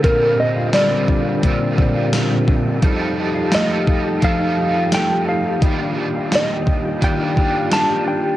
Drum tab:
HH |x-x-x-x-|x-x-x-x-|x-x-x-x-|
TB |--x---x-|--x---x-|--x---x-|
SD |--o---o-|--o---o-|--o---o-|
BD |o--ooo-o|o--oo---|o--ooo--|